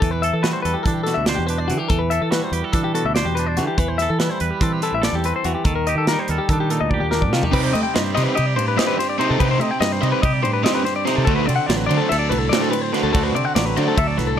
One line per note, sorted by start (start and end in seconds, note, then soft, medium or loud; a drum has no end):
0.00 0.30 E2 medium
0.00 1.70 E3 medium
0.00 0.27 G3 medium
0.00 0.11 A4 medium
0.00 kick loud
0.00 closed hi-hat medium
0.11 0.22 B4 medium
0.22 0.65 A4 medium
0.22 0.33 E5 medium
0.22 closed hi-hat medium
0.33 0.52 E3 medium
0.33 0.44 A4 medium
0.42 2.15 G3 medium
0.42 1.06 F#4 medium
0.42 0.53 B4 medium
0.42 snare loud
0.42 closed hi-hat medium
0.53 0.62 C5 medium
0.62 0.74 E2 medium
0.62 1.29 A4 medium
0.62 0.74 B4 medium
0.62 closed hi-hat medium
0.74 0.83 G4 medium
0.83 1.14 E3 medium
0.83 0.93 A4 medium
0.83 kick loud
0.83 closed hi-hat medium
0.87 1.49 D4 medium
0.93 1.03 G4 medium
1.03 1.70 B2 medium
1.03 1.88 F#4 soft
1.03 1.16 A4 medium
1.03 snare soft
1.03 closed hi-hat medium
1.14 1.36 D2 medium
1.14 1.26 E5 medium
1.26 1.89 C5 medium
1.26 1.37 D5 medium
1.26 snare loud
1.26 closed hi-hat medium
1.35 1.71 E2 medium
1.35 1.47 G4 medium
1.47 1.89 D4 medium
1.47 1.58 B4 medium
1.47 closed hi-hat medium
1.58 1.69 D5 medium
1.68 1.79 D3 medium
1.68 1.90 E3 medium
1.68 1.78 F#4 medium
1.68 closed hi-hat medium
1.78 1.88 G4 medium
1.88 2.18 E2 medium
1.88 3.57 E3 medium
1.88 2.00 A4 medium
1.88 kick loud
1.88 closed hi-hat medium
1.99 2.10 B4 medium
2.10 2.52 A4 medium
2.10 2.21 E5 medium
2.10 closed hi-hat medium
2.22 2.40 E3 medium
2.22 2.31 A4 medium
2.31 4.05 G3 medium
2.31 2.94 F#4 medium
2.31 2.43 B4 medium
2.31 snare loud
2.31 closed hi-hat medium
2.43 2.53 C5 medium
2.52 2.62 E2 medium
2.52 2.64 G4 medium
2.52 2.63 B4 medium
2.52 closed hi-hat medium
2.63 2.72 G4 medium
2.63 3.16 A4 soft
2.72 3.02 E3 medium
2.72 3.37 D4 medium
2.72 2.84 A4 medium
2.72 kick loud
2.72 closed hi-hat medium
2.84 2.94 G4 medium
2.94 3.57 B2 medium
2.94 3.76 F#4 medium
2.94 3.05 A4 medium
2.94 closed hi-hat medium
3.05 3.24 D2 medium
3.05 3.14 E5 medium
3.15 3.76 C5 medium
3.15 3.26 D5 medium
3.15 snare loud
3.15 closed hi-hat medium
3.25 3.59 E2 medium
3.25 3.36 G4 medium
3.35 3.46 B4 medium
3.35 closed hi-hat medium
3.39 3.77 D4 medium
3.46 3.57 D5 medium
3.57 3.67 D3 medium
3.57 3.76 E3 medium
3.57 3.67 F#4 medium
3.57 snare soft
3.57 closed hi-hat medium
3.67 3.78 G4 medium
3.78 4.06 E2 medium
3.78 4.81 E3 medium
3.78 3.88 B4 medium
3.78 kick medium
3.78 closed hi-hat medium
3.88 3.99 C5 medium
3.98 4.41 A4 medium
3.98 4.09 E5 medium
3.98 snare soft
3.98 closed hi-hat medium
4.10 4.28 E3 medium
4.10 4.20 A4 medium
4.19 6.11 G3 medium
4.19 4.82 E4 medium
4.19 4.30 B4 medium
4.19 snare loud
4.19 closed hi-hat medium
4.30 4.41 C5 medium
4.40 4.50 E2 medium
4.40 4.51 B4 medium
4.40 5.01 B4 medium
4.40 closed hi-hat medium
4.51 4.62 G4 medium
4.61 4.89 E3 medium
4.61 5.24 C4 medium
4.61 4.73 A4 medium
4.61 kick loud
4.61 closed hi-hat medium
4.73 4.83 G4 medium
4.82 5.44 E3 medium
4.82 5.64 E4 medium
4.82 4.93 A4 medium
4.82 closed hi-hat medium
4.92 5.11 A1 loud
4.92 5.04 E5 medium
5.02 5.63 A4 medium
5.02 5.14 D5 medium
5.02 snare loud
5.02 closed hi-hat medium
5.13 5.32 E2 medium
5.13 5.25 G4 medium
5.24 5.64 C4 medium
5.24 5.35 B4 medium
5.24 closed hi-hat medium
5.36 5.46 C5 medium
5.44 5.54 E2 medium
5.44 5.64 E3 medium
5.44 5.54 F#4 medium
5.44 closed hi-hat medium
5.55 5.64 G4 medium
5.64 5.93 D#2 medium
5.64 7.32 D#3 medium
5.64 5.75 A4 medium
5.64 kick loud
5.64 closed hi-hat medium
5.75 5.86 A#4 medium
5.87 6.29 G4 medium
5.87 5.97 D#5 medium
5.87 closed hi-hat medium
5.95 6.15 D#3 medium
5.95 6.08 A4 medium
6.07 6.19 A#4 medium
6.07 snare loud
6.07 closed hi-hat medium
6.12 7.53 G3 medium
6.12 6.70 D#4 medium
6.19 6.30 C5 medium
6.28 6.38 D#2 medium
6.28 6.92 A4 medium
6.28 6.39 A#4 medium
6.28 closed hi-hat medium
6.38 6.49 G4 medium
6.49 6.77 D#3 medium
6.49 7.13 D4 medium
6.49 6.60 A4 medium
6.49 kick loud
6.49 closed hi-hat medium
6.60 6.70 G4 medium
6.70 7.33 A#2 medium
6.70 7.51 D#4 medium
6.70 6.81 A4 medium
6.70 closed hi-hat medium
6.80 6.99 D2 medium
6.80 6.90 D#5 medium
6.90 7.54 G4 medium
6.90 7.01 D5 medium
6.90 kick medium
7.00 7.32 D#2 medium
7.00 7.11 G4 medium
7.11 7.52 D4 medium
7.11 7.22 A#4 medium
7.11 snare medium
7.21 7.32 D5 medium
7.21 kick medium
7.33 7.42 C3 loud
7.33 7.51 D#3 medium
7.33 7.44 F4 medium
7.33 snare medium
7.43 7.54 G4 medium
7.43 floor tom medium
7.52 7.72 C3 loud
7.52 8.57 C3 medium
7.52 7.95 G3 medium
7.52 7.73 C4 medium
7.52 7.72 C4 medium
7.52 7.72 D#4 medium
7.52 9.19 D#4 medium
7.52 7.72 G4 medium
7.52 7.64 B4 medium
7.52 7.72 C5 loud
7.52 kick loud
7.52 crash loud
7.56 8.34 G4 medium
7.64 7.74 C5 medium
7.73 7.84 A3 loud
7.73 8.80 C4 medium
7.73 7.83 D#5 medium
7.73 muted overdriven electric guitar stroke soft
7.73 ride medium
7.83 7.94 G5 medium
7.94 8.14 G2 medium
7.94 9.38 G3 medium
7.94 8.04 D#5 medium
7.94 muted overdriven electric guitar stroke soft
7.94 snare loud
7.94 ride loud
8.04 8.14 C5 medium
8.15 8.26 C3 loud
8.15 8.35 C4 medium
8.15 8.35 D#4 medium
8.15 8.36 G4 medium
8.15 8.35 C5 loud
8.15 8.23 D#5 medium
8.15 snare soft
8.15 ride medium
8.23 8.35 B4 medium
8.34 10.22 G4 medium
8.34 8.46 D#5 medium
8.34 muted overdriven electric guitar stroke soft
8.34 ride loud
8.39 8.58 C3 medium
8.46 8.56 D5 medium
8.56 9.20 G2 medium
8.56 8.76 A2 medium
8.56 8.67 C5 medium
8.56 muted overdriven electric guitar stroke medium
8.56 ride medium
8.68 8.77 B4 medium
8.77 8.97 C4 medium
8.77 9.62 C4 medium
8.77 8.96 D#4 medium
8.77 8.96 G4 medium
8.77 8.96 C5 loud
8.77 8.87 D#5 medium
8.77 snare loud
8.77 ride loud
8.87 8.98 B4 medium
8.97 9.09 C5 medium
8.97 muted overdriven electric guitar stroke medium
8.97 snare soft
8.97 ride medium
9.09 9.19 D5 medium
9.18 9.38 C3 medium
9.18 9.38 C4 medium
9.18 9.39 D#4 loud
9.18 9.38 D#4 medium
9.18 9.39 G4 medium
9.18 9.39 C5 loud
9.18 9.30 C5 medium
9.18 ride medium
9.30 9.39 C3 medium
9.30 9.40 A4 medium
9.39 10.44 C3 medium
9.39 9.59 C3 loud
9.39 9.59 C4 medium
9.39 9.59 D#4 medium
9.39 11.06 D#4 medium
9.39 9.59 G4 medium
9.39 9.50 B4 medium
9.39 9.59 C5 loud
9.39 kick loud
9.39 ride loud
9.51 9.60 C5 medium
9.59 9.69 A3 loud
9.59 10.66 C4 medium
9.59 9.71 D#5 medium
9.59 muted overdriven electric guitar stroke medium
9.59 ride medium
9.71 9.80 G5 medium
9.80 9.99 G2 loud
9.80 11.24 G3 medium
9.80 9.92 D#5 medium
9.80 muted overdriven electric guitar stroke soft
9.80 snare loud
9.80 ride loud
9.92 10.02 C5 medium
10.01 10.12 C3 loud
10.01 10.22 C4 medium
10.01 10.22 D#4 medium
10.01 10.22 G4 medium
10.01 10.22 C5 loud
10.01 10.12 D#5 medium
10.01 ride medium
10.12 10.22 B4 medium
10.22 10.45 C3 medium
10.22 11.28 G4 medium
10.22 10.33 D#5 medium
10.22 muted overdriven electric guitar stroke soft
10.22 kick loud
10.22 ride loud
10.33 10.43 D5 medium
10.43 11.07 G2 medium
10.43 10.63 A2 medium
10.43 10.53 C5 medium
10.43 muted overdriven electric guitar stroke medium
10.43 ride medium
10.53 10.64 B4 medium
10.63 10.84 C4 medium
10.63 11.30 C4 medium
10.63 10.83 D#4 medium
10.63 10.83 G4 loud
10.63 10.83 C5 loud
10.63 10.74 D#5 medium
10.63 snare loud
10.63 ride loud
10.75 10.85 B4 medium
10.84 10.95 C5 medium
10.84 muted overdriven electric guitar stroke medium
10.84 snare soft
10.84 ride medium
10.96 11.05 D5 medium
11.05 11.27 C3 medium
11.05 11.27 C4 medium
11.05 11.27 D#4 medium
11.05 11.25 D#4 medium
11.05 11.27 G4 loud
11.05 11.16 C5 medium
11.05 11.27 C5 loud
11.05 snare soft
11.05 ride medium
11.16 11.27 C3 medium
11.16 11.24 A4 medium
11.25 11.46 D2 loud
11.25 12.92 D3 medium
11.25 11.46 A3 medium
11.25 11.46 D4 loud
11.25 12.93 F#4 medium
11.25 11.46 F#4 loud
11.25 11.35 A4 medium
11.25 11.46 C5 medium
11.25 kick loud
11.25 ride medium
11.36 11.46 B4 medium
11.46 11.58 C3 loud
11.46 11.55 D5 medium
11.46 muted overdriven electric guitar stroke medium
11.46 ride medium
11.50 12.52 C4 medium
11.56 11.66 F#5 medium
11.66 11.87 A1 medium
11.66 13.39 F#3 medium
11.66 11.76 D5 medium
11.66 muted overdriven electric guitar stroke soft
11.66 snare loud
11.66 ride loud
11.76 11.86 B4 medium
11.87 11.99 D3 loud
11.87 12.09 D4 medium
11.87 12.09 F#4 medium
11.87 12.10 C5 loud
11.87 11.98 D5 medium
11.91 12.08 A3 medium
11.91 ride medium
11.97 12.09 A4 medium
12.09 12.32 D2 loud
12.09 13.12 A4 medium
12.09 12.19 E5 medium
12.09 muted overdriven electric guitar stroke soft
12.09 snare soft
12.09 ride loud
12.19 12.30 D5 medium
12.29 12.49 C2 medium
12.29 12.93 A2 medium
12.29 12.38 B4 medium
12.29 muted overdriven electric guitar stroke medium
12.29 ride medium
12.38 12.50 A4 medium
12.49 12.72 A3 medium
12.49 13.12 C4 medium
12.49 12.72 D4 loud
12.49 12.71 F#4 loud
12.49 12.72 C5 loud
12.49 12.61 D5 medium
12.49 snare loud
12.49 ride loud
12.61 12.70 A4 medium
12.71 12.81 B4 medium
12.71 muted overdriven electric guitar stroke medium
12.71 ride medium
12.81 12.92 C5 medium
12.92 13.11 D3 medium
12.92 13.14 A3 medium
12.92 13.14 D4 loud
12.92 13.15 F#4 medium
12.92 13.14 F#4 medium
12.92 13.03 B4 medium
12.92 13.14 C5 medium
12.92 snare soft
12.92 ride medium
13.03 13.13 D2 medium
13.03 13.12 A4 medium
13.13 13.33 D2 loud
13.13 14.39 D3 medium
13.13 13.34 A3 loud
13.13 13.34 D4 loud
13.13 14.39 F#4 medium
13.13 13.34 F#4 loud
13.13 13.24 A4 medium
13.13 13.34 C5 loud
13.13 kick loud
13.13 ride loud
13.24 13.34 B4 medium
13.35 13.44 C3 loud
13.35 14.39 C4 medium
13.35 13.45 D5 medium
13.35 muted overdriven electric guitar stroke medium
13.35 ride medium
13.45 13.55 F#5 medium
13.55 13.74 A1 loud
13.55 14.39 F#3 medium
13.55 13.66 D5 medium
13.55 muted overdriven electric guitar stroke soft
13.55 snare loud
13.55 ride loud
13.66 13.77 B4 medium
13.77 13.86 D3 loud
13.77 13.96 A3 medium
13.77 13.97 D4 medium
13.77 13.97 F#4 medium
13.77 13.97 C5 loud
13.77 13.87 D5 medium
13.77 ride medium
13.88 13.97 A4 medium
13.98 14.19 D2 medium
13.98 14.39 A4 medium
13.98 14.07 E5 medium
13.98 muted overdriven electric guitar stroke soft
13.98 kick loud
13.98 ride loud
14.07 14.18 D5 medium
14.18 14.36 C2 medium
14.18 14.39 A2 medium
14.18 14.28 B4 medium
14.18 muted overdriven electric guitar stroke soft
14.18 snare soft
14.18 ride medium
14.27 14.38 A4 medium